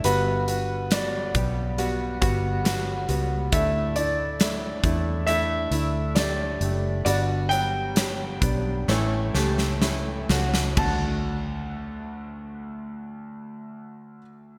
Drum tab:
CC |----------------|----------------|----------------|x---------------|
HH |x-x-x-x-x-x-x-x-|x-x-x-x-x-x-x-x-|x-x-x-x---------|----------------|
SD |----o-------o---|----o-------o---|----o---o-ooo-oo|----------------|
FT |----------------|----------------|----------------|o---------------|
BD |------o---o-----|o-----o---------|------o---------|o---------------|